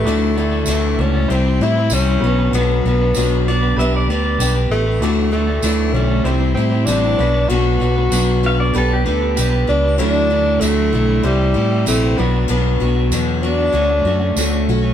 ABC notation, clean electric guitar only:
X:1
M:4/4
L:1/16
Q:1/4=96
K:D
V:1 name="Clean electric guitar"
[D,E,A,DFd]2 [A,DFd] [A,DFd] [D,E,A,DFd]2 [A,DFd] [A,DFd] [=C,G,=CEG=c] [CEGc] [CEGc] [CEGc] [C,G,CEGc] [CEGc] [B,,F,B,DFB] [B,DFB] | [B,,F,B,DFB]2 [B,DFB] [B,DFB] [B,,F,B,DFB]2 [B,DFB] [B,DFB] [B,DGB] [DGB] [B,DGB] [DGB] [B,DGB] [DGB]2 [DGB] | [D,E,A,DFd]2 [A,DFd] [A,DFd] [D,E,A,DFd]2 [A,DFd] [A,DFd] [=C,G,=CEG=c] [CEGc] [CEGc] [CEGc] [C,G,CEGc] [CEGc] [B,,F,B,DFB] [B,DFB] | [B,,F,B,DFB]2 [B,DFB] [B,DFB] [B,,F,B,DFB]2 [B,DFB] [B,DFB] [B,DGB] [DGB] [B,DGB] [DGB] [B,DGB] [DGB]2 [DGB] |
[D,F,A,DE]2 [F,A,DE] [A,DE] [D,F,A,DE]2 [F,A,DE] [A,DE] [=C,E,G,EG] [G,EG] [E,G,EG] [G,EG] [C,E,G,EG] [G,EG] [B,,F,B,DF] [B,DF] | [B,,F,B,DF]2 [F,B,DF] [B,DF] [B,,F,B,DF]2 [F,B,DF] [B,DF] [D,A,CF] [A,CF] [D,A,CF] [A,CF] [D,A,CF] [A,CF]2 [A,CF] |]